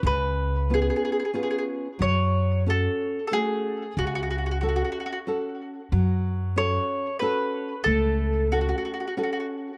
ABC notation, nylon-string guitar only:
X:1
M:3/4
L:1/8
Q:"Swing" 1/4=92
K:F#m
V:1 name="Nylon-string guitar"
C,2 [B,C^E]2 [B,CE]2 | F,2 [CFA]2 [A,CF]2 | C,2 [CFA]2 [CFA]2 | F,2 [CFA]2 [CFA]2 |
A,2 [CFA]2 [CFA]2 |]